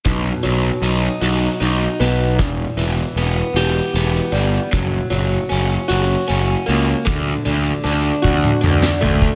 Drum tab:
HH |x-x-x-x-x-x-|x-x-x-x-x-x-|x-x-x-x-x-x-|x-x-x-------|
SD |------------|------------|------------|---------o--|
T1 |------------|------------|------------|-------o----|
T2 |------------|------------|------------|--------o---|
FT |------------|------------|------------|----------o-|
BD |o-----------|o-----------|o-----------|o-----o----o|